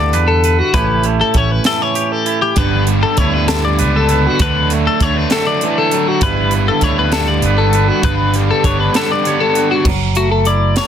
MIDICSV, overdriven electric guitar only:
0, 0, Header, 1, 2, 480
1, 0, Start_track
1, 0, Tempo, 607903
1, 591, Time_signature, 6, 3, 24, 8
1, 8583, End_track
2, 0, Start_track
2, 0, Title_t, "Overdriven electric guitar"
2, 0, Program_c, 0, 29
2, 2033, Note_on_c, 0, 43, 87
2, 2042, Note_on_c, 0, 50, 87
2, 2042, Note_on_c, 0, 55, 88
2, 2045, Note_on_c, 0, 59, 92
2, 2055, Note_on_c, 0, 62, 89
2, 2505, Note_off_c, 0, 50, 0
2, 2513, Note_off_c, 0, 55, 0
2, 2514, Note_on_c, 0, 50, 74
2, 2521, Note_off_c, 0, 59, 0
2, 2522, Note_on_c, 0, 55, 68
2, 2530, Note_off_c, 0, 62, 0
2, 2530, Note_on_c, 0, 59, 72
2, 2534, Note_on_c, 0, 62, 84
2, 2747, Note_off_c, 0, 59, 0
2, 2748, Note_off_c, 0, 62, 0
2, 2751, Note_on_c, 0, 62, 84
2, 2753, Note_off_c, 0, 43, 0
2, 2754, Note_off_c, 0, 55, 0
2, 2755, Note_off_c, 0, 50, 0
2, 2756, Note_on_c, 0, 59, 75
2, 2764, Note_on_c, 0, 50, 72
2, 2764, Note_on_c, 0, 55, 82
2, 2772, Note_on_c, 0, 43, 65
2, 2984, Note_off_c, 0, 50, 0
2, 2991, Note_off_c, 0, 55, 0
2, 2994, Note_on_c, 0, 50, 61
2, 3000, Note_off_c, 0, 59, 0
2, 3001, Note_on_c, 0, 55, 72
2, 3010, Note_on_c, 0, 59, 71
2, 3014, Note_off_c, 0, 62, 0
2, 3018, Note_on_c, 0, 62, 74
2, 3242, Note_off_c, 0, 43, 0
2, 3459, Note_off_c, 0, 50, 0
2, 3462, Note_off_c, 0, 55, 0
2, 3467, Note_off_c, 0, 59, 0
2, 3476, Note_on_c, 0, 50, 90
2, 3486, Note_on_c, 0, 54, 87
2, 3493, Note_on_c, 0, 57, 96
2, 3495, Note_off_c, 0, 62, 0
2, 3498, Note_on_c, 0, 62, 91
2, 3950, Note_off_c, 0, 50, 0
2, 3958, Note_off_c, 0, 54, 0
2, 3959, Note_on_c, 0, 50, 63
2, 3968, Note_on_c, 0, 54, 73
2, 3973, Note_off_c, 0, 57, 0
2, 3975, Note_off_c, 0, 62, 0
2, 3976, Note_on_c, 0, 57, 76
2, 3978, Note_on_c, 0, 62, 84
2, 4200, Note_off_c, 0, 62, 0
2, 4203, Note_on_c, 0, 62, 84
2, 4205, Note_off_c, 0, 54, 0
2, 4209, Note_off_c, 0, 57, 0
2, 4212, Note_on_c, 0, 57, 82
2, 4213, Note_off_c, 0, 50, 0
2, 4214, Note_on_c, 0, 54, 75
2, 4222, Note_on_c, 0, 50, 73
2, 4435, Note_off_c, 0, 50, 0
2, 4443, Note_off_c, 0, 54, 0
2, 4445, Note_on_c, 0, 50, 66
2, 4453, Note_off_c, 0, 57, 0
2, 4453, Note_on_c, 0, 54, 61
2, 4456, Note_on_c, 0, 57, 69
2, 4460, Note_off_c, 0, 62, 0
2, 4463, Note_on_c, 0, 62, 71
2, 4904, Note_off_c, 0, 50, 0
2, 4908, Note_off_c, 0, 54, 0
2, 4918, Note_on_c, 0, 43, 89
2, 4921, Note_on_c, 0, 50, 92
2, 4927, Note_on_c, 0, 55, 89
2, 4929, Note_off_c, 0, 57, 0
2, 4932, Note_on_c, 0, 59, 103
2, 4933, Note_off_c, 0, 62, 0
2, 4936, Note_on_c, 0, 62, 93
2, 5385, Note_off_c, 0, 50, 0
2, 5395, Note_on_c, 0, 50, 72
2, 5403, Note_off_c, 0, 55, 0
2, 5403, Note_off_c, 0, 59, 0
2, 5406, Note_off_c, 0, 62, 0
2, 5406, Note_on_c, 0, 55, 73
2, 5406, Note_on_c, 0, 59, 83
2, 5409, Note_on_c, 0, 62, 86
2, 5617, Note_off_c, 0, 59, 0
2, 5617, Note_off_c, 0, 62, 0
2, 5624, Note_off_c, 0, 55, 0
2, 5627, Note_off_c, 0, 50, 0
2, 5627, Note_on_c, 0, 59, 86
2, 5627, Note_on_c, 0, 62, 83
2, 5634, Note_on_c, 0, 55, 82
2, 5637, Note_on_c, 0, 50, 72
2, 5643, Note_off_c, 0, 43, 0
2, 5646, Note_on_c, 0, 43, 69
2, 5864, Note_off_c, 0, 50, 0
2, 5868, Note_off_c, 0, 55, 0
2, 5873, Note_on_c, 0, 50, 65
2, 5876, Note_off_c, 0, 59, 0
2, 5877, Note_on_c, 0, 55, 66
2, 5882, Note_off_c, 0, 62, 0
2, 5886, Note_on_c, 0, 59, 70
2, 5891, Note_on_c, 0, 62, 71
2, 6119, Note_off_c, 0, 43, 0
2, 6335, Note_off_c, 0, 50, 0
2, 6339, Note_on_c, 0, 43, 85
2, 6340, Note_off_c, 0, 55, 0
2, 6344, Note_off_c, 0, 59, 0
2, 6345, Note_on_c, 0, 50, 89
2, 6347, Note_off_c, 0, 62, 0
2, 6352, Note_on_c, 0, 55, 88
2, 6356, Note_on_c, 0, 59, 91
2, 6358, Note_on_c, 0, 62, 101
2, 6820, Note_off_c, 0, 50, 0
2, 6828, Note_off_c, 0, 55, 0
2, 6829, Note_on_c, 0, 50, 69
2, 6832, Note_off_c, 0, 59, 0
2, 6838, Note_on_c, 0, 55, 71
2, 6841, Note_off_c, 0, 62, 0
2, 6842, Note_on_c, 0, 59, 75
2, 6850, Note_on_c, 0, 62, 73
2, 7047, Note_off_c, 0, 62, 0
2, 7056, Note_off_c, 0, 59, 0
2, 7056, Note_on_c, 0, 62, 90
2, 7059, Note_off_c, 0, 55, 0
2, 7060, Note_off_c, 0, 50, 0
2, 7064, Note_off_c, 0, 43, 0
2, 7065, Note_on_c, 0, 59, 80
2, 7068, Note_on_c, 0, 55, 77
2, 7070, Note_on_c, 0, 50, 65
2, 7074, Note_on_c, 0, 43, 69
2, 7292, Note_off_c, 0, 50, 0
2, 7298, Note_off_c, 0, 55, 0
2, 7302, Note_on_c, 0, 50, 69
2, 7306, Note_off_c, 0, 59, 0
2, 7306, Note_off_c, 0, 62, 0
2, 7307, Note_on_c, 0, 55, 64
2, 7315, Note_on_c, 0, 59, 70
2, 7316, Note_on_c, 0, 62, 76
2, 7551, Note_off_c, 0, 43, 0
2, 7771, Note_off_c, 0, 50, 0
2, 7773, Note_off_c, 0, 55, 0
2, 7777, Note_off_c, 0, 59, 0
2, 7778, Note_off_c, 0, 62, 0
2, 8583, End_track
0, 0, End_of_file